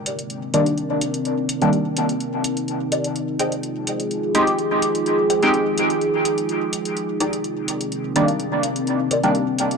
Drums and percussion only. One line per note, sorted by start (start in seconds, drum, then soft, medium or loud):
0.06 closed hi-hat medium
0.19 closed hi-hat soft
0.30 closed hi-hat soft
0.54 closed hi-hat medium
0.66 closed hi-hat soft
0.78 closed hi-hat soft
1.01 closed hi-hat medium
1.14 closed hi-hat soft
1.25 closed hi-hat soft
1.49 closed hi-hat medium
1.62 closed hi-hat soft
1.73 closed hi-hat soft
1.97 closed hi-hat medium
2.09 closed hi-hat soft
2.20 closed hi-hat soft
2.44 closed hi-hat medium
2.57 closed hi-hat soft
2.68 closed hi-hat soft
2.92 closed hi-hat medium
3.04 closed hi-hat soft
3.16 closed hi-hat soft
3.39 closed hi-hat medium
3.52 closed hi-hat soft
3.63 closed hi-hat soft
3.87 closed hi-hat medium
4.00 closed hi-hat soft
4.11 closed hi-hat soft
4.35 closed hi-hat medium
4.47 closed hi-hat soft
4.58 closed hi-hat soft
4.82 closed hi-hat medium
4.95 closed hi-hat soft
5.06 closed hi-hat soft
5.30 closed hi-hat medium
5.42 closed hi-hat soft
5.54 closed hi-hat soft
5.78 closed hi-hat medium
5.90 closed hi-hat soft
6.01 closed hi-hat soft
6.25 closed hi-hat medium
6.38 closed hi-hat soft
6.49 closed hi-hat soft
6.73 closed hi-hat medium
6.85 closed hi-hat soft
6.97 closed hi-hat soft
7.20 closed hi-hat medium
7.33 closed hi-hat soft
7.44 closed hi-hat soft
7.68 closed hi-hat medium
7.81 closed hi-hat soft
7.92 closed hi-hat soft
8.16 closed hi-hat medium
8.28 closed hi-hat soft
8.39 closed hi-hat soft
8.63 closed hi-hat medium
8.76 closed hi-hat soft
8.87 closed hi-hat soft
9.11 closed hi-hat medium
9.23 closed hi-hat soft
9.35 closed hi-hat soft
9.59 closed hi-hat medium
9.71 closed hi-hat soft